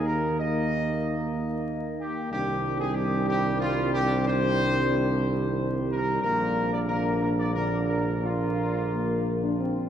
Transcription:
Already playing: D#2 D#3 A#3 D#4
0.05 A#4
0.39 D#5
2.00 G4
2.31 C2 D#3 G3 C4 D4 G4
2.80 G#4
2.95 G4
3.28 G4
3.60 F4
3.94 G4
4.27 C5
5.91 A#4
6.22 A#1 D3 A#3 D4 A#4
6.72 D5
6.88 D3 A#3 D4 A#4
7.20 A#4
7.38 D5
7.54 D3 A#3 D4 A#4
7.88 A#4
8.23 D3 A#3 D4 F4
8.92 A#3
9.43 D4
9.60 C4

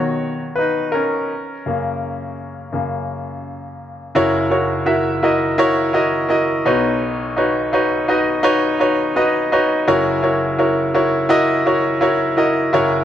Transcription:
Already playing: B2 D#3 F#3 F#4 A#4 B4 C#5 D#5 F#5
0.56 D#4 B4
0.92 C#4 A#4
1.66 F#2 C#3 A#3
2.72 F#2 C#3 A#3
4.15 F#1 F#2 E4 F#4 A#4 C#5
4.50 E4 F#4 A#4 C#5
4.86 E4 F#4 A#4 E5
5.23 E4 F#4 A#4 D#5
5.58 E4 F#4 A#4 C#5
5.93 E4 F#4 A#4 D#5
6.29 E4 F#4 A#4 D#5
6.65 B1 B2 D#4 F#4 B4 C#5
7.37 D#4 F#4 B4 C#5
7.73 D#4 F#4 B4 C#5
8.08 D#4 F#4 B4 D#5
8.43 D#4 F#4 B4 C#5
8.80 D#4 F#4 B4 C#5
9.16 D#4 F#4 B4 D#5
9.52 D#4 F#4 B4 C#5
9.88 F#1 F#2 E4 F#4 A#4 C#5
10.23 E4 F#4 A#4 C#5
10.59 E4 F#4 A#4 C#5
10.95 E4 F#4 A#4 C#5
11.29 E4 F#4 A#4 D#5
11.66 E4 F#4 A#4 C#5
12.01 E4 F#4 A#4 C#5
12.37 E4 F#4 A#4 D#5
12.73 F#1 F#2 E4 F#4 A#4 C#5

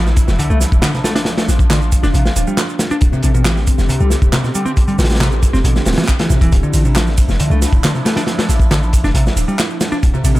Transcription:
Already playing: A1 F3 D4 E4, impact
0.06 snare, shaker
0.16 kick, closed hi-hat, shaker
0.28 F1, snare, shaker
0.39 C2 D3, closed hi-hat, shaker
0.50 C2 A3, shaker
0.61 snare, closed hi-hat, shaker
0.72 D1, kick, shaker
0.82 D3, snare, clap, closed hi-hat, shaker
0.94 C3, snare, shaker
1.04 A3, snare, closed hi-hat, shaker
1.15 D4, snare, closed hi-hat, shaker
1.25 F4, snare, closed hi-hat, shaker
1.38 A3, snare, closed hi-hat, shaker
1.48 A1, snare, closed hi-hat, shaker
1.59 kick, shaker
1.70 D3, snare, clap, closed hi-hat, shaker
1.82 shaker
1.92 kick, closed hi-hat, shaker
2.03 F1 D4, snare, shaker
2.14 A1 C3, closed hi-hat, shaker
2.25 snare, shaker
2.36 D1, closed hi-hat, shaker
2.47 G3, shaker
2.57 snare, clap, closed hi-hat, shaker
2.69 shaker
2.79 snare, closed hi-hat, shaker
2.91 D4, shaker
3.01 D1 D3 C4 G4, kick, closed hi-hat, shaker
3.13 C3, shaker
3.23 A1 C3, closed hi-hat, shaker
3.34 B2, shaker
3.45 E3, snare, clap, closed hi-hat, shaker
3.57 snare, shaker
3.67 kick, closed hi-hat, shaker
3.78 F1, snare, shaker
3.89 C2 C3, closed hi-hat, shaker
4.00 C2 G3, shaker
4.10 snare, closed hi-hat, shaker
4.22 D1, kick, shaker
4.32 C3, snare, clap, closed hi-hat, shaker
4.44 B2, snare, shaker
4.55 G3, closed hi-hat, shaker
4.65 C4, shaker
4.77 kick, closed hi-hat, shaker
4.88 G3, closed hi-hat, shaker
4.99 A1, snare, closed hi-hat, shaker
5.04 snare, closed hi-hat
5.10 snare, closed hi-hat, shaker
5.16 snare, closed hi-hat
5.20 C3, snare, clap, closed hi-hat, shaker
5.32 shaker
5.43 kick, closed hi-hat, shaker
5.53 F1 C4, snare, shaker
5.64 A1 B2, closed hi-hat, shaker
5.76 snare, shaker
5.85 D1, snare, closed hi-hat, shaker
5.92 snare, closed hi-hat
5.98 E3, snare, closed hi-hat, shaker
6.03 snare, closed hi-hat
6.08 kick, clap, closed hi-hat, shaker
6.19 E3, snare, closed hi-hat, shaker
6.30 A1 C3, snare, shaker
6.41 D1 E3, kick, closed hi-hat, shaker
6.52 D1 F3 D4 E4, kick, closed hi-hat, shaker
6.63 D3, shaker
6.73 A1 D3, closed hi-hat, ride, shaker
6.85 C3, shaker
6.96 F3, snare, clap, closed hi-hat, shaker
7.07 snare, shaker
7.18 kick, closed hi-hat, ride, shaker
7.29 F1, snare, shaker
7.40 C2 D3, closed hi-hat, shaker
7.50 C2 A3, shaker
7.62 snare, closed hi-hat, ride, shaker
7.72 D1, kick, shaker
7.84 D3, snare, clap, closed hi-hat, shaker
7.94 C3, snare, shaker
8.05 A3, snare, closed hi-hat, ride, shaker
8.16 D4, snare, closed hi-hat, shaker
8.27 snare, closed hi-hat, shaker
8.38 A3, snare, closed hi-hat, shaker
8.49 A1, snare, closed hi-hat, ride, shaker
8.60 kick, shaker
8.71 D3, snare, clap, closed hi-hat, shaker
8.83 shaker
8.93 kick, closed hi-hat, ride, shaker
9.04 F1 D4, snare, shaker
9.14 A1 C3, closed hi-hat, shaker
9.27 snare, shaker
9.36 D1, closed hi-hat, ride, shaker
9.48 G3, shaker
9.59 snare, clap, closed hi-hat, shaker
9.70 shaker
9.81 snare, closed hi-hat, ride, shaker
9.92 D4, shaker
10.03 D1 D3 C4 G4, kick, closed hi-hat, shaker
10.14 C3, shaker
10.24 A1 C3, closed hi-hat, ride, shaker
10.35 B2, shaker

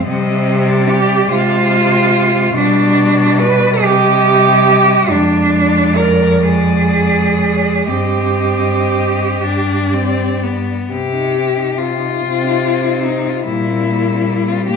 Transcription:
0.06 C3 G3 C4 D#5
0.68 D5
0.89 G4
1.29 C3 G#3 F4 C5
2.54 B2 G3 D4 D5
3.40 B4
3.81 C3 G3 G4 D#5
5.10 F2 G#3 D4 D5
5.96 A#4
6.43 G#3 G#4 D5
7.88 G2 C4 G4 D#5
9.42 G2 D4 D5
9.94 C4
10.43 B3
10.89 C3 C4 G4
11.13 D#4
11.35 C4
11.57 D#4
11.78 C4 F4
11.98 D#4
12.21 C3 C4
12.43 D#4
12.65 C4
12.84 D#4
13.05 C4 D#4
13.28 D#4 F4
13.45 A#2 G3 A#3 E4
13.67 C4
13.90 A#3
14.10 C4
14.29 A#3
14.48 C4 F4
14.67 A#2 A#3 G4

